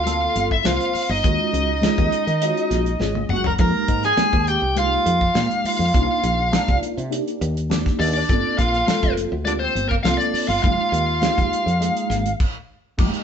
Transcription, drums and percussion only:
0.06 closed hi-hat, muted conga, high conga
0.36 closed hi-hat
0.51 kick
0.64 snare, closed hi-hat, high conga
0.81 closed hi-hat
0.94 open hi-hat, muted conga
1.24 kick, closed hi-hat, muted conga
1.52 closed hi-hat, muted conga
1.82 snare, closed hi-hat, high conga
1.98 kick, closed hi-hat
2.12 closed hi-hat
2.28 closed hi-hat
2.41 closed hi-hat, muted conga
2.57 closed hi-hat
2.71 snare, closed hi-hat
2.86 closed hi-hat
2.99 snare, high conga
3.15 high tom
3.29 mid tom
3.44 floor tom
3.58 kick, closed hi-hat
3.88 kick, closed hi-hat, muted conga
4.03 snare, closed hi-hat
4.17 snare, closed hi-hat, high conga
4.33 kick, closed hi-hat
4.47 closed hi-hat
4.76 closed hi-hat, muted conga, high conga
5.06 closed hi-hat
5.21 kick
5.35 snare, closed hi-hat, high conga
5.51 closed hi-hat
5.64 open hi-hat, muted conga
5.94 kick, closed hi-hat
6.23 closed hi-hat, muted conga
6.52 snare, closed hi-hat, high conga
6.68 kick, closed hi-hat
6.83 closed hi-hat
6.98 closed hi-hat
7.11 closed hi-hat, muted conga
7.28 closed hi-hat
7.42 closed hi-hat
7.57 closed hi-hat
7.70 snare, closed hi-hat, high conga
7.86 kick, snare
7.99 open hi-hat, muted conga
8.29 kick, closed hi-hat
8.58 kick, snare, closed hi-hat, muted conga
8.74 closed hi-hat
8.87 snare, closed hi-hat, high conga
9.03 kick, closed hi-hat
9.17 closed hi-hat
9.45 closed hi-hat, muted conga, high conga
9.76 closed hi-hat
9.91 kick
10.05 snare, closed hi-hat, high conga
10.21 closed hi-hat
10.34 open hi-hat, muted conga
10.64 kick, closed hi-hat
10.93 closed hi-hat, muted conga
11.22 snare, closed hi-hat, high conga
11.38 kick, closed hi-hat
11.53 closed hi-hat
11.68 closed hi-hat
11.81 closed hi-hat, muted conga
11.97 closed hi-hat
12.11 snare, closed hi-hat
12.26 closed hi-hat
12.40 kick, crash
12.98 kick, crash, muted conga
13.14 closed hi-hat

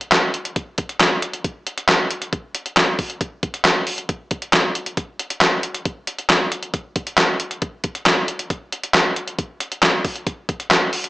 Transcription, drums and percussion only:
0.01 closed hi-hat
0.12 snare, clap, closed hi-hat
0.34 closed hi-hat
0.45 closed hi-hat
0.56 kick, closed hi-hat
0.78 kick, closed hi-hat
0.89 closed hi-hat
1.00 snare, clap, closed hi-hat
1.22 closed hi-hat
1.33 closed hi-hat
1.44 kick, closed hi-hat
1.67 closed hi-hat
1.78 closed hi-hat
1.89 snare, clap, closed hi-hat
2.10 closed hi-hat
2.22 closed hi-hat
2.33 kick, closed hi-hat
2.55 closed hi-hat
2.66 closed hi-hat
2.77 snare, clap, closed hi-hat
2.99 kick, open hi-hat
3.10 closed hi-hat
3.21 kick, closed hi-hat
3.43 kick, closed hi-hat
3.54 closed hi-hat
3.65 snare, clap, closed hi-hat
3.87 open hi-hat
3.98 closed hi-hat
4.09 kick, closed hi-hat
4.31 kick, closed hi-hat
4.42 closed hi-hat
4.53 snare, clap, closed hi-hat
4.75 closed hi-hat
4.86 closed hi-hat
4.97 kick, closed hi-hat
5.19 closed hi-hat
5.30 closed hi-hat
5.41 snare, clap, closed hi-hat
5.63 closed hi-hat
5.74 closed hi-hat
5.85 kick, closed hi-hat
6.07 closed hi-hat
6.19 closed hi-hat
6.29 snare, clap, closed hi-hat
6.52 closed hi-hat
6.63 closed hi-hat
6.74 kick, closed hi-hat
6.96 kick, closed hi-hat
7.07 closed hi-hat
7.18 snare, clap, closed hi-hat
7.40 closed hi-hat
7.51 closed hi-hat
7.62 kick, closed hi-hat
7.84 kick, closed hi-hat
7.95 closed hi-hat
8.06 snare, clap, closed hi-hat
8.28 closed hi-hat
8.39 closed hi-hat
8.50 kick, closed hi-hat
8.72 closed hi-hat
8.83 closed hi-hat
8.94 snare, clap, closed hi-hat
9.16 closed hi-hat
9.28 closed hi-hat
9.39 kick, closed hi-hat
9.60 closed hi-hat
9.72 closed hi-hat
9.82 snare, clap, closed hi-hat
10.05 kick, open hi-hat
10.16 closed hi-hat
10.27 kick, closed hi-hat
10.49 kick, closed hi-hat
10.60 closed hi-hat
10.71 snare, clap, closed hi-hat
10.93 open hi-hat
11.04 closed hi-hat

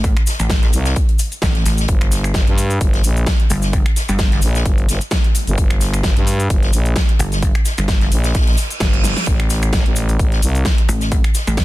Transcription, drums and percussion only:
0.04 kick, closed hi-hat, cabasa
0.17 finger snap, closed hi-hat
0.27 snare, closed hi-hat, open hi-hat, cabasa
0.39 finger snap, closed hi-hat, cabasa
0.50 kick, snare, closed hi-hat, cabasa
0.63 snare, closed hi-hat
0.73 closed hi-hat, open hi-hat, cabasa
0.85 snare, closed hi-hat, cabasa
0.96 kick, closed hi-hat, cabasa
1.08 closed hi-hat
1.19 closed hi-hat, open hi-hat, cabasa
1.32 closed hi-hat, cabasa
1.42 kick, snare, closed hi-hat, cabasa
1.55 snare, closed hi-hat
1.66 snare, closed hi-hat, open hi-hat, cabasa
1.78 snare, closed hi-hat, cabasa
1.88 kick, closed hi-hat, cabasa
2.01 finger snap, closed hi-hat
2.12 snare, closed hi-hat, open hi-hat, cabasa
2.24 finger snap, closed hi-hat, cabasa
2.34 kick, snare, closed hi-hat, cabasa
2.36 snare
2.47 closed hi-hat
2.58 closed hi-hat, open hi-hat, cabasa
2.70 closed hi-hat, cabasa
2.81 kick, closed hi-hat, cabasa
2.94 snare, closed hi-hat
3.04 closed hi-hat, open hi-hat, cabasa
3.17 closed hi-hat, cabasa
3.26 kick, snare, closed hi-hat, cabasa
3.40 closed hi-hat
3.50 closed hi-hat, open hi-hat, cabasa
3.62 snare, closed hi-hat, cabasa
3.73 kick, closed hi-hat, cabasa
3.86 finger snap, closed hi-hat
3.96 snare, closed hi-hat, open hi-hat, cabasa
4.09 finger snap, closed hi-hat, cabasa
4.19 kick, snare, closed hi-hat, cabasa
4.31 snare, closed hi-hat
4.42 closed hi-hat, open hi-hat, cabasa
4.55 snare, closed hi-hat, cabasa
4.65 kick, closed hi-hat, cabasa
4.78 closed hi-hat
4.89 snare, closed hi-hat, open hi-hat, cabasa
5.01 closed hi-hat, cabasa
5.11 kick, snare, closed hi-hat, cabasa
5.24 closed hi-hat
5.35 closed hi-hat, open hi-hat, cabasa
5.47 closed hi-hat, cabasa
5.57 kick, closed hi-hat, cabasa
5.70 finger snap, closed hi-hat
5.80 snare, closed hi-hat, open hi-hat, cabasa
5.94 finger snap, closed hi-hat, cabasa
6.03 kick, snare, closed hi-hat, cabasa
6.17 closed hi-hat
6.27 closed hi-hat, open hi-hat, cabasa
6.40 closed hi-hat, cabasa
6.50 kick, closed hi-hat, cabasa
6.63 snare, closed hi-hat
6.73 closed hi-hat, open hi-hat, cabasa
6.85 closed hi-hat, cabasa
6.96 kick, snare, closed hi-hat, cabasa
7.09 closed hi-hat
7.19 closed hi-hat, open hi-hat, cabasa
7.32 snare, closed hi-hat, cabasa
7.42 kick, closed hi-hat, cabasa
7.55 finger snap, closed hi-hat
7.65 snare, closed hi-hat, open hi-hat, cabasa
7.78 finger snap, closed hi-hat, cabasa
7.88 kick, snare, closed hi-hat, cabasa
8.01 snare, closed hi-hat
8.12 closed hi-hat, open hi-hat, cabasa
8.24 snare, closed hi-hat, cabasa
8.34 kick, snare, closed hi-hat, cabasa
8.41 snare, closed hi-hat
8.47 snare, closed hi-hat
8.52 snare, closed hi-hat
8.57 closed hi-hat, open hi-hat, cabasa
8.70 closed hi-hat, cabasa
8.80 kick, snare, closed hi-hat, cabasa
8.94 closed hi-hat
9.03 snare, closed hi-hat, open hi-hat, cabasa
9.17 snare, closed hi-hat, cabasa
9.27 kick, closed hi-hat, cabasa
9.40 finger snap, closed hi-hat
9.50 snare, closed hi-hat, open hi-hat, cabasa
9.62 finger snap, closed hi-hat, cabasa
9.73 kick, snare, closed hi-hat, cabasa
9.86 closed hi-hat
9.96 closed hi-hat, open hi-hat, cabasa
10.09 closed hi-hat, cabasa
10.19 kick, closed hi-hat, cabasa
10.32 snare, closed hi-hat
10.42 closed hi-hat, open hi-hat, cabasa
10.55 closed hi-hat, cabasa
10.65 kick, snare, closed hi-hat, cabasa
10.78 closed hi-hat
10.89 closed hi-hat, open hi-hat, cabasa
11.00 snare, closed hi-hat, cabasa
11.12 kick, closed hi-hat, cabasa
11.24 finger snap, closed hi-hat
11.34 snare, closed hi-hat, open hi-hat, cabasa
11.47 finger snap, closed hi-hat, cabasa
11.57 kick, snare, closed hi-hat, cabasa

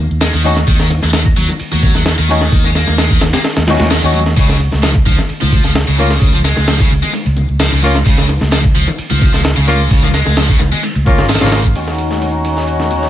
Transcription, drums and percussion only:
0.11 closed hi-hat
0.21 snare, closed hi-hat, ride
0.33 closed hi-hat, ride, high bongo
0.44 closed hi-hat, ride, high conga
0.57 snare, closed hi-hat, high bongo
0.67 kick, closed hi-hat, ride
0.80 snare
0.90 closed hi-hat, ride, high bongo
1.02 snare, closed hi-hat, high conga
1.13 snare, closed hi-hat, ride, high bongo
1.26 kick
1.36 closed hi-hat, ride
1.49 closed hi-hat, ride, high bongo, low conga
1.59 closed hi-hat, ride
1.71 high bongo, high conga
1.83 kick, closed hi-hat, ride, low conga
1.95 snare, closed hi-hat
2.05 snare, closed hi-hat, open hi-hat, high bongo
2.18 closed hi-hat, ride
2.29 closed hi-hat, ride, high bongo, high conga
2.41 snare, closed hi-hat
2.52 kick, closed hi-hat, ride
2.64 high bongo
2.75 snare, closed hi-hat, ride
2.87 snare, closed hi-hat, high bongo, high conga
2.98 snare, closed hi-hat, ride
3.11 kick
3.21 snare, closed hi-hat, ride, high bongo
3.33 snare, closed hi-hat, ride, low conga
3.44 snare, closed hi-hat, ride, high bongo
3.57 snare, closed hi-hat, ride, high conga
3.68 snare, closed hi-hat, ride, low conga
3.80 snare, closed hi-hat, ride, high bongo
3.91 snare, closed hi-hat, ride
4.03 closed hi-hat, ride, high bongo
4.13 closed hi-hat, ride, high conga
4.26 snare, closed hi-hat
4.37 kick, closed hi-hat, ride
4.48 snare, high bongo
4.60 closed hi-hat, ride
4.71 snare, closed hi-hat, high conga
4.83 snare, closed hi-hat, ride, high bongo
4.95 kick
5.06 kick, closed hi-hat, ride, high bongo
5.18 snare, closed hi-hat, low conga
5.29 closed hi-hat, ride
5.41 high bongo, high conga
5.52 kick, closed hi-hat, ride, low conga
5.64 snare, closed hi-hat, high bongo
5.75 snare, closed hi-hat, open hi-hat
5.88 closed hi-hat, ride
5.98 closed hi-hat, ride, high bongo, high conga
6.11 snare, closed hi-hat
6.21 kick, closed hi-hat, ride, high bongo
6.45 snare, closed hi-hat, ride
6.56 snare, closed hi-hat, high bongo, high conga
6.68 snare, closed hi-hat, ride
6.80 kick, high bongo
6.91 closed hi-hat, ride
7.03 closed hi-hat, low conga
7.13 closed hi-hat, ride, high bongo
7.25 closed hi-hat, ride, high conga
7.36 closed hi-hat, high bongo, low conga
7.49 closed hi-hat
7.60 snare, closed hi-hat, ride
7.72 closed hi-hat, ride, high bongo
7.83 closed hi-hat, ride, high conga
7.95 snare, closed hi-hat, high bongo
8.06 kick, closed hi-hat, ride
8.18 snare
8.29 closed hi-hat, ride, high bongo
8.41 snare, closed hi-hat, high conga
8.52 snare, closed hi-hat, ride, high bongo
8.64 kick
8.75 closed hi-hat, ride
8.87 closed hi-hat, ride, high bongo, low conga
8.98 closed hi-hat, ride
9.10 high bongo, high conga
9.21 kick, closed hi-hat, ride, low conga
9.34 snare, closed hi-hat
9.44 snare, closed hi-hat, open hi-hat, high bongo
9.57 closed hi-hat, ride
9.68 closed hi-hat, high bongo, high conga
9.80 closed hi-hat
9.91 kick, closed hi-hat, ride
10.03 closed hi-hat, high bongo
10.14 snare, closed hi-hat, ride
10.25 snare, closed hi-hat, high bongo, high conga
10.37 snare, closed hi-hat, ride
10.49 kick, closed hi-hat
10.59 closed hi-hat, ride, high bongo
10.71 closed hi-hat, low conga
10.83 closed hi-hat, ride, high bongo
10.95 closed hi-hat, ride, high conga
11.06 kick, closed hi-hat, ride, low conga
11.18 snare, closed hi-hat, high bongo
11.29 snare, closed hi-hat, ride
11.35 snare, ride
11.41 snare, closed hi-hat, ride, high bongo
11.47 snare, ride
11.52 snare, closed hi-hat, ride, high conga
11.64 kick, closed hi-hat
11.75 closed hi-hat, ride
11.87 snare, high bongo
11.98 closed hi-hat, ride
12.10 snare, closed hi-hat, high conga
12.21 closed hi-hat, ride, high bongo
12.45 closed hi-hat, ride, high bongo
12.57 snare, closed hi-hat
12.67 closed hi-hat, ride
12.79 snare, closed hi-hat, high bongo, high conga
12.91 closed hi-hat, ride, low conga
13.03 snare, closed hi-hat, high bongo

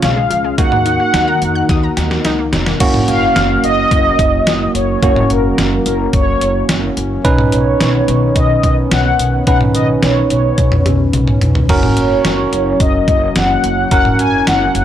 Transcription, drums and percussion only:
0.02 snare, closed hi-hat
0.31 closed hi-hat
0.58 kick, closed hi-hat
0.72 mid tom
0.86 closed hi-hat
1.14 snare, closed hi-hat
1.42 closed hi-hat
1.69 kick, snare, closed hi-hat
1.97 snare, closed hi-hat
2.11 snare
2.25 snare, closed hi-hat
2.53 snare, closed hi-hat
2.66 snare
2.80 kick, closed hi-hat, crash
2.94 mid tom
3.08 closed hi-hat
3.36 snare, closed hi-hat
3.64 closed hi-hat
3.91 kick, closed hi-hat
4.19 kick, closed hi-hat
4.47 snare, closed hi-hat
4.75 closed hi-hat
5.03 kick, closed hi-hat
5.16 mid tom
5.30 closed hi-hat
5.58 snare, closed hi-hat
5.86 closed hi-hat
6.13 kick, closed hi-hat
6.41 closed hi-hat
6.69 snare, closed hi-hat
6.97 closed hi-hat
7.25 kick, closed hi-hat
7.38 mid tom
7.52 closed hi-hat
7.81 snare, closed hi-hat
8.08 closed hi-hat
8.36 kick, closed hi-hat
8.63 kick, closed hi-hat
8.91 snare, closed hi-hat
9.19 closed hi-hat
9.47 kick, closed hi-hat
9.61 mid tom
9.75 closed hi-hat
10.03 snare, closed hi-hat
10.30 closed hi-hat
10.58 kick, closed hi-hat
10.72 mid tom
10.86 closed hi-hat, mid tom, cowbell
11.13 closed hi-hat, high tom
11.28 mid tom
11.41 closed hi-hat, mid tom
11.55 floor tom
11.69 kick, crash
11.83 mid tom
11.97 closed hi-hat
12.25 snare, closed hi-hat
12.53 closed hi-hat
12.80 kick, closed hi-hat
13.08 kick, closed hi-hat
13.36 snare, closed hi-hat
13.64 closed hi-hat
13.91 kick, closed hi-hat
14.05 mid tom
14.19 closed hi-hat
14.47 snare, closed hi-hat
14.75 closed hi-hat

